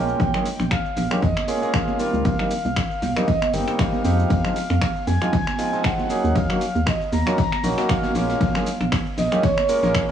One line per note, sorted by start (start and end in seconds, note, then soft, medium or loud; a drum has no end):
0.00 0.14 A#1 medium
0.00 0.31 G#3 medium
0.00 0.31 A#3 medium
0.00 0.31 C#4 medium
0.00 0.31 F4 medium
0.00 0.31 A#4 loud
0.00 0.73 G5 loud
0.09 shaker soft
0.20 0.31 A#1 loud
0.20 kick loud
0.20 closed hi-hat medium
0.20 high conga loud
0.20 shaker soft
0.34 0.47 G#3 medium
0.34 0.47 A#3 medium
0.34 0.47 C#4 medium
0.34 0.47 F4 medium
0.34 0.47 G#4 medium
0.34 finger snap medium
0.34 low conga medium
0.34 shaker soft
0.46 closed hi-hat medium
0.46 open hi-hat loud
0.46 shaker medium
0.60 0.69 A#1 medium
0.60 finger snap soft
0.60 high conga medium
0.60 shaker soft
0.71 1.22 F5 loud
0.71 finger snap loud
0.71 kick loud
0.71 snare loud
0.71 closed hi-hat medium
0.71 shaker soft
0.86 shaker soft
0.97 1.08 A#1 medium
0.97 closed hi-hat medium
0.97 open hi-hat loud
0.97 high conga loud
0.97 shaker medium
1.11 1.24 G#3 loud
1.11 1.24 A#3 loud
1.11 1.24 C#4 medium
1.11 1.24 F4 medium
1.11 1.24 G4 loud
1.11 finger snap medium
1.11 low conga medium
1.11 shaker soft
1.22 1.33 F2 loud
1.22 1.46 D#5 loud
1.22 kick loud
1.22 closed hi-hat medium
1.22 shaker soft
1.37 finger snap medium
1.37 snare medium
1.37 high conga medium
1.37 shaker soft
1.48 1.60 G#3 loud
1.48 1.60 A#3 medium
1.48 1.60 C#4 medium
1.48 1.60 F4 medium
1.48 1.60 G#4 loud
1.48 1.75 C#5 medium
1.48 closed hi-hat medium
1.48 open hi-hat loud
1.48 shaker medium
1.62 1.97 G#3 medium
1.62 1.97 A#3 medium
1.62 1.97 C#4 medium
1.62 1.97 F4 medium
1.62 1.97 G#4 medium
1.62 snare soft
1.62 shaker soft
1.74 2.24 F5 loud
1.74 finger snap loud
1.74 kick loud
1.74 snare loud
1.74 closed hi-hat medium
1.74 shaker soft
1.88 snare soft
1.88 high conga loud
1.88 shaker soft
1.99 2.36 D#3 medium
1.99 2.36 G3 medium
1.99 2.36 A#3 medium
1.99 2.36 C4 medium
1.99 2.36 F4 loud
1.99 closed hi-hat medium
1.99 open hi-hat loud
1.99 shaker medium
2.14 2.22 C#2 loud
2.14 shaker soft
2.25 2.36 C2 loud
2.25 3.29 F5 loud
2.25 kick loud
2.25 closed hi-hat medium
2.25 ride medium
2.25 high conga medium
2.25 shaker soft
2.39 2.52 D#3 medium
2.39 2.52 G3 medium
2.39 2.52 A#3 medium
2.39 2.52 C4 medium
2.39 2.52 D#4 medium
2.39 finger snap medium
2.39 low conga medium
2.39 shaker soft
2.51 closed hi-hat medium
2.51 open hi-hat loud
2.51 shaker medium
2.65 2.74 C2 medium
2.65 high conga medium
2.65 shaker soft
2.76 finger snap loud
2.76 kick loud
2.76 snare loud
2.76 closed hi-hat medium
2.76 ride medium
2.76 shaker soft
2.91 shaker soft
3.02 3.13 C2 medium
3.02 closed hi-hat medium
3.02 open hi-hat medium
3.02 high conga loud
3.02 shaker medium
3.16 3.29 D#3 loud
3.16 3.29 G3 medium
3.16 3.29 A#3 loud
3.16 3.29 C4 medium
3.16 3.29 D#4 loud
3.16 finger snap medium
3.16 low conga medium
3.16 shaker soft
3.28 3.53 D#5 loud
3.28 kick loud
3.28 closed hi-hat medium
3.28 ride medium
3.28 shaker soft
3.42 finger snap medium
3.42 high conga medium
3.42 shaker soft
3.53 3.64 G1 medium
3.53 3.66 D#3 loud
3.53 3.66 G3 medium
3.53 3.66 A#3 medium
3.53 3.66 C4 medium
3.53 3.66 D#4 loud
3.53 3.81 G5 medium
3.53 snare soft
3.53 closed hi-hat medium
3.53 open hi-hat loud
3.53 shaker medium
3.68 4.02 D#3 medium
3.68 4.02 G3 medium
3.68 4.02 A#3 medium
3.68 4.02 C4 medium
3.68 4.02 D#4 medium
3.68 finger snap soft
3.68 shaker soft
3.79 4.30 F5 loud
3.79 finger snap loud
3.79 kick loud
3.79 snare loud
3.79 closed hi-hat medium
3.79 ride medium
3.79 shaker soft
3.92 snare soft
3.92 high conga medium
3.92 shaker soft
4.05 4.25 F2 medium
4.05 4.41 F3 medium
4.05 4.41 G#3 medium
4.05 4.41 C4 medium
4.05 4.41 D#4 medium
4.05 4.41 G4 loud
4.05 closed hi-hat medium
4.05 open hi-hat medium
4.05 shaker medium
4.19 shaker soft
4.30 4.41 F2 loud
4.30 5.09 F5 loud
4.30 kick loud
4.30 closed hi-hat medium
4.30 ride medium
4.30 high conga medium
4.30 shaker soft
4.45 4.57 F3 medium
4.45 4.57 G#3 medium
4.45 4.57 C4 medium
4.45 4.57 D#4 medium
4.45 4.57 F4 medium
4.45 finger snap medium
4.45 low conga medium
4.45 shaker soft
4.56 closed hi-hat medium
4.56 open hi-hat loud
4.56 shaker medium
4.70 4.79 F2 medium
4.70 finger snap soft
4.70 high conga medium
4.70 shaker soft
4.82 finger snap loud
4.82 kick loud
4.82 snare loud
4.82 closed hi-hat medium
4.82 ride medium
4.82 shaker soft
4.96 shaker soft
5.07 5.18 F2 medium
5.07 5.86 G#5 loud
5.07 closed hi-hat medium
5.07 open hi-hat medium
5.07 high conga medium
5.07 shaker medium
5.21 5.34 F3 loud
5.21 5.34 G#3 medium
5.21 5.34 C4 medium
5.21 5.34 D#4 medium
5.21 5.34 F4 loud
5.21 finger snap medium
5.21 low conga medium
5.21 shaker soft
5.33 5.44 C2 loud
5.33 kick loud
5.33 closed hi-hat medium
5.33 ride medium
5.33 shaker soft
5.47 finger snap medium
5.47 snare soft
5.47 high conga medium
5.47 shaker soft
5.59 5.71 F3 medium
5.59 5.71 G#3 medium
5.59 5.71 C4 medium
5.59 5.71 D#4 medium
5.59 5.71 F4 loud
5.59 closed hi-hat medium
5.59 open hi-hat loud
5.59 shaker medium
5.73 6.07 F3 medium
5.73 6.07 G#3 medium
5.73 6.07 C4 medium
5.73 6.07 D#4 medium
5.73 6.07 F4 medium
5.73 snare soft
5.73 shaker soft
5.83 6.37 F#5 loud
5.83 finger snap loud
5.83 kick loud
5.83 snare loud
5.83 closed hi-hat medium
5.83 ride medium
5.83 shaker soft
5.98 snare medium
5.98 high conga medium
5.98 shaker soft
6.09 6.46 F#3 medium
6.09 6.46 A#3 medium
6.09 6.46 C#4 medium
6.09 6.46 D#4 medium
6.09 6.46 G#4 loud
6.09 closed hi-hat medium
6.09 open hi-hat medium
6.09 shaker medium
6.24 6.33 D#2 loud
6.24 shaker soft
6.35 6.46 D#2 loud
6.35 6.86 F5 loud
6.35 kick loud
6.35 closed hi-hat medium
6.35 ride medium
6.35 high conga medium
6.35 shaker soft
6.50 6.62 F#3 medium
6.50 6.63 A#3 medium
6.50 6.63 C#4 medium
6.50 6.63 D#4 medium
6.50 6.63 F#4 medium
6.50 finger snap medium
6.50 low conga loud
6.50 shaker soft
6.61 closed hi-hat medium
6.61 open hi-hat loud
6.61 shaker medium
6.75 6.84 D#2 medium
6.75 high conga medium
6.75 shaker soft
6.86 6.98 D#5 loud
6.86 finger snap loud
6.86 kick loud
6.86 snare loud
6.86 closed hi-hat loud
6.86 ride medium
6.86 shaker soft
7.01 shaker soft
7.12 7.23 D#2 medium
7.12 7.85 A#5 loud
7.12 closed hi-hat medium
7.12 open hi-hat medium
7.12 high conga medium
7.12 shaker medium
7.26 7.39 F#3 loud
7.26 7.39 A#3 loud
7.26 7.39 C#4 medium
7.26 7.39 D#4 medium
7.26 7.40 F4 loud
7.26 finger snap medium
7.26 low conga medium
7.26 shaker soft
7.38 kick loud
7.38 closed hi-hat medium
7.38 ride medium
7.38 shaker soft
7.52 finger snap medium
7.52 high conga medium
7.52 shaker soft
7.64 7.74 A#1 medium
7.64 7.76 F#3 loud
7.64 7.76 A#3 medium
7.64 7.76 C#4 medium
7.64 7.76 D#4 medium
7.64 7.76 F#4 loud
7.64 snare loud
7.64 closed hi-hat medium
7.64 open hi-hat loud
7.64 shaker medium
7.77 8.12 F#3 medium
7.77 8.12 A#3 medium
7.77 8.12 C#4 medium
7.77 8.12 D#4 medium
7.77 8.12 F#4 medium
7.77 finger snap soft
7.77 snare loud
7.77 closed hi-hat medium
7.77 shaker soft
7.89 8.37 F5 loud
7.89 finger snap loud
7.89 kick loud
7.89 snare loud
7.89 closed hi-hat medium
7.89 ride medium
7.89 shaker soft
8.03 snare loud
8.03 closed hi-hat medium
8.03 high conga medium
8.03 shaker soft
8.15 8.35 A#1 medium
8.15 8.51 G#3 medium
8.15 8.51 A#3 medium
8.15 8.51 C#4 medium
8.15 8.52 F4 medium
8.15 8.52 A#4 loud
8.15 snare loud
8.15 closed hi-hat medium
8.15 open hi-hat medium
8.15 shaker medium
8.29 snare medium
8.29 closed hi-hat medium
8.29 shaker soft
8.41 8.51 A#1 loud
8.41 8.88 F5 loud
8.41 kick loud
8.41 snare loud
8.41 closed hi-hat medium
8.41 ride medium
8.41 high conga medium
8.41 shaker soft
8.55 8.68 G#3 medium
8.55 8.68 A#3 medium
8.55 8.68 C#4 medium
8.55 8.68 F4 medium
8.55 8.68 G#4 medium
8.55 finger snap medium
8.55 snare loud
8.55 closed hi-hat medium
8.55 low conga loud
8.55 shaker soft
8.66 closed hi-hat medium
8.66 open hi-hat loud
8.66 shaker medium
8.81 8.89 A#1 medium
8.81 finger snap soft
8.81 high conga medium
8.81 shaker soft
8.92 finger snap loud
8.92 kick loud
8.92 snare loud
8.92 closed hi-hat medium
8.92 ride medium
8.92 shaker soft
9.06 shaker soft
9.17 9.28 A#1 loud
9.17 9.45 D#5 loud
9.17 snare loud
9.17 closed hi-hat medium
9.17 open hi-hat medium
9.17 high conga medium
9.17 shaker medium
9.32 9.45 G#3 loud
9.32 9.45 A#3 loud
9.32 9.45 C#4 medium
9.32 9.45 F4 loud
9.32 9.45 G4 loud
9.32 finger snap medium
9.32 low conga medium
9.32 shaker soft
9.43 10.11 C#5 loud
9.43 kick loud
9.43 snare medium
9.43 closed hi-hat medium
9.43 ride medium
9.43 shaker soft
9.58 finger snap medium
9.58 snare soft
9.58 high conga medium
9.58 shaker soft
9.68 9.81 G#3 loud
9.68 9.81 A#3 medium
9.68 9.81 C#4 medium
9.68 9.81 F4 medium
9.68 9.81 A#4 loud
9.68 closed hi-hat medium
9.68 open hi-hat loud
9.68 shaker medium
9.83 10.11 A#1 loud
9.83 10.05 G#3 medium
9.83 10.05 A#3 medium
9.83 10.05 C#4 medium
9.83 10.05 F4 medium
9.83 10.05 A#4 loud
9.83 snare loud
9.83 closed hi-hat medium
9.83 shaker soft
9.95 finger snap loud
9.95 kick loud
9.95 snare soft
9.95 ride medium
9.95 shaker soft